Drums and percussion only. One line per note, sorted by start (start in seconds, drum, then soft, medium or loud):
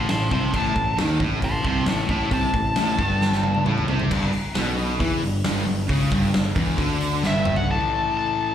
0.09 snare loud
0.09 open hi-hat medium
0.31 kick loud
0.54 kick loud
0.54 crash medium
0.76 kick loud
0.98 snare loud
0.98 open hi-hat medium
1.20 kick loud
1.42 kick loud
1.42 open hi-hat medium
1.65 kick loud
1.86 snare loud
1.86 open hi-hat medium
2.09 kick loud
2.31 kick loud
2.31 open hi-hat medium
2.54 kick loud
2.76 snare loud
2.76 open hi-hat medium
2.99 kick loud
3.21 snare medium
3.32 snare medium
3.43 high tom medium
3.55 high tom medium
3.66 mid tom medium
3.78 mid tom medium
3.88 floor tom loud
3.99 floor tom loud
4.11 kick loud
4.11 crash loud
4.33 open hi-hat medium
4.55 snare loud
4.55 open hi-hat medium
4.78 open hi-hat medium
5.00 kick loud
5.00 open hi-hat medium
5.22 open hi-hat medium
5.44 snare loud
5.44 open hi-hat medium
5.67 open hi-hat medium
5.89 kick loud
5.89 open hi-hat medium
6.12 kick loud
6.12 open hi-hat medium
6.34 snare loud
6.34 open hi-hat medium
6.55 kick loud
6.55 open hi-hat medium
6.78 kick loud
6.78 open hi-hat loud
7.00 open hi-hat medium
7.23 snare medium
7.34 high tom medium
7.45 mid tom loud
7.56 floor tom medium